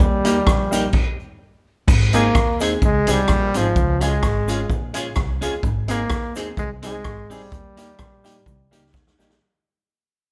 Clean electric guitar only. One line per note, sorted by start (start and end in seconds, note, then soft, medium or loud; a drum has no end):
0.25 0.36 A#3 medium
0.25 0.37 D#4 medium
0.25 0.37 G4 medium
0.73 0.84 A#3 medium
0.73 0.84 D#4 medium
0.73 0.85 G4 medium
2.14 2.25 C4 medium
2.14 2.25 D#4 medium
2.14 2.26 G#4 medium
2.61 2.72 C4 medium
2.61 2.72 D#4 medium
2.61 2.73 G#4 loud
2.83 muted clean electric guitar stroke soft
3.08 3.19 C4 medium
3.08 3.19 D#4 medium
3.08 3.20 G#4 loud
3.55 3.66 C4 medium
3.55 3.66 D#4 medium
3.55 3.67 G#4 medium
4.01 4.12 C#4 medium
4.01 4.13 F4 medium
4.01 4.13 G#4 medium
4.48 4.59 C#4 medium
4.48 4.60 F4 medium
4.48 4.60 G#4 medium
4.95 5.06 C#4 medium
4.95 5.07 F4 medium
4.95 5.07 G#4 medium
5.41 5.53 C#4 medium
5.41 5.53 F4 medium
5.41 5.54 G#4 loud
5.89 6.00 C4 medium
5.89 6.01 D#4 medium
5.89 6.01 G#4 medium
6.36 6.47 C4 medium
6.36 6.48 D#4 medium
6.36 6.48 G#4 medium
6.57 muted clean electric guitar stroke soft
6.82 6.94 C4 medium
6.82 6.95 D#4 loud
6.82 6.95 G#4 loud
7.30 7.42 C4 medium
7.30 7.42 D#4 medium
7.30 7.42 G#4 medium
7.77 7.88 A#3 medium
7.77 7.89 D#4 medium
7.77 7.89 G4 medium
8.24 8.36 A#3 medium
8.24 8.36 D#4 medium
8.24 8.36 G4 medium
8.72 8.83 A#3 loud
8.72 8.84 D#4 medium
8.72 8.84 G4 loud
9.19 9.30 A#3 medium
9.19 9.31 D#4 medium
9.19 9.31 G4 medium